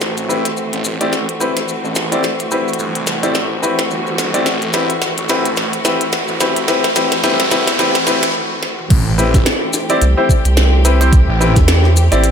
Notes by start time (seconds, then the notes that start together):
Already playing: E3 A3 C4
0.01 A1 F#4, snare, riser, maracas
0.17 closed hi-hat, maracas
0.29 C4 E4 G4 B4, maracas
0.45 snare, closed hi-hat, maracas
0.57 maracas
0.73 A1, closed hi-hat
0.84 maracas
1.01 C4 E4 G4 D5, closed hi-hat, maracas
1.13 snare, maracas
1.29 closed hi-hat
1.40 C4 E4 G4 B4, maracas
1.57 snare, closed hi-hat, maracas
1.68 maracas
1.84 A1, maracas
1.95 snare, maracas
2.12 C4 E4 G4 D5, closed hi-hat, maracas
2.23 snare, maracas
2.39 closed hi-hat, maracas
2.51 C4 E4 G4 B4, maracas
2.68 maracas
2.73 closed hi-hat
2.79 G1, maracas
2.95 C2, closed hi-hat
3.07 snare, maracas
3.23 A1 C4 E4 G4 D5, closed hi-hat, maracas
3.35 snare, maracas
3.63 C4 E4 G4 B4, maracas
3.79 snare, closed hi-hat, maracas
3.91 G1, maracas
4.07 maracas
4.18 snare, maracas
4.34 C4 E4 G4 D5, closed hi-hat, maracas
4.46 A1, snare, maracas
4.62 closed hi-hat, maracas
4.73 C4 E4 G4 B4, snare, maracas
4.90 closed hi-hat, maracas
5.02 snare, maracas
5.18 A1, closed hi-hat
5.29 C4 E4 G4 B4, snare, maracas
5.45 closed hi-hat, maracas
5.56 snare, maracas
5.73 closed hi-hat
5.85 C4 E4 G4 B4, snare, maracas
6.01 closed hi-hat, maracas
6.12 snare, maracas
6.28 A1, maracas
6.40 C4 E4 G4 B4, snare, maracas
6.56 closed hi-hat, maracas
6.68 C4 E4 G4 B4, snare, noise sweep, maracas
6.84 snare, closed hi-hat, maracas
6.96 C4 E4 G4 B4, snare, maracas
7.12 snare, closed hi-hat, maracas
7.24 G1 C4 E4 G4 B4, snare, maracas
7.40 C2, snare, closed hi-hat, maracas
7.51 C4 E4 G4 B4, snare, maracas
7.67 E2, snare, closed hi-hat, maracas
7.79 C4 E4 G4 B4, snare, maracas
7.95 snare, closed hi-hat, maracas
8.07 C4 E4 G4 B4, snare, maracas
8.23 snare, closed hi-hat, maracas
8.63 snare
8.79 mid tom
8.90 A1 E3 A3 C4 G4, kick, closed hi-hat, crash, maracas
9.18 C4 E4 G4 B4, maracas
9.34 kick, snare, closed hi-hat, maracas
9.46 snare, closed hi-hat, maracas
9.73 snare, maracas
9.89 C4 E4 G4 D5, closed hi-hat, maracas
10.02 C2, closed hi-hat, maracas
10.17 C4 E4 G4 C5
10.29 kick, maracas
10.45 C2, closed hi-hat, maracas
10.57 snare, maracas
10.85 C4 E4 G4 B4, closed hi-hat, maracas
11.01 C4 E4 G4 C5, closed hi-hat, maracas
11.13 kick, closed hi-hat, maracas
11.29 A1
11.40 C4 E4 G4 B4, maracas
11.56 E2, kick, snare, closed hi-hat, maracas
11.68 snare, closed hi-hat, maracas
11.84 snare
11.96 maracas
12.12 A1 C4 E4 G4 D5, closed hi-hat, maracas
12.24 closed hi-hat, maracas